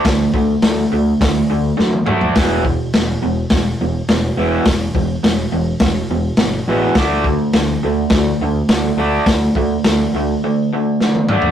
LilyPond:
<<
  \new Staff \with { instrumentName = "Overdriven electric guitar" } { \clef bass \time 4/4 \key d \mixolydian \tempo 4 = 104 <d a>8 <d a>8 <d a>8 <d a>8 <d a>8 <d a>8 <d a>8 <d a d'>8 | <e, b, e>8 <e, b,>8 <e, b,>8 <e, b,>8 <e, b,>8 <e, b,>8 <e, b,>8 <e, b, e>8 | <e, b,>8 <e, b,>8 <e, b,>8 <e, b,>8 <e, b,>8 <e, b,>8 <e, b,>8 <e, b, e>8 | <d a d'>8 <d a>8 <d a>8 <d a>8 <d a>8 <d a>8 <d a>8 <d a d'>8 |
<d a>8 <d a>8 <d a>8 <d a>8 <d a>8 <d a>8 <d a>8 <d a d'>8 | }
  \new Staff \with { instrumentName = "Picked electric bass" } { \clef bass \time 4/4 \key d \mixolydian d,8 d,8 d,8 d,8 d,8 d,8 fis,8 fis,8 | e,,4 e,,8 e,,8 e,,8 e,,8 e,,8 e,,8 | e,,8 e,,8 e,,8 e,,8 e,,8 e,,8 g,,8 a,,8 | d,4 d,8 d,8 d,8 d,8 d,8 d,8 |
d,8 d,8 d,8 d,8 r2 | }
  \new DrumStaff \with { instrumentName = "Drums" } \drummode { \time 4/4 <hho bd sn>8 bd8 <hho sn>4 <hho bd sn>4 sn16 tommh16 toml16 tomfh16 | <hho bd sn>8 bd8 <hho sn>4 <hho bd sn>4 <hho sn>4 | <hho bd sn>8 bd8 <hho sn>4 <hho bd sn>4 <hho sn>4 | <hho bd sn>8 bd8 <hho sn>4 <hho bd sn>4 <hho sn>4 |
<hho bd sn>8 bd8 <hho sn>4 r4 sn16 tommh16 toml16 tomfh16 | }
>>